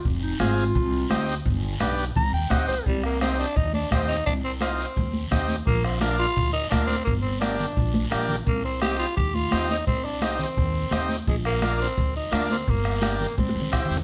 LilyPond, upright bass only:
\new Staff \with { instrumentName = "Upright bass" } { \clef bass \time 4/4 \key c \minor \tempo 4 = 171 f,,4 aes,,4 c,4 d,4 | g,,4 b,,4 c,8 ees,8 d,8 c,8 | c,2 ees,4 ees,4 | c,2 ees,4 ees,4 |
bes,,2 d,4 d,4 | g,,2 bes,,4 bes,,4 | c,2 ees,4 ees,4 | c,2 ees,4 ees,4 |
bes,,2 d,4 d,4 | g,,2 c,8 c,8 d,8 e,8 | }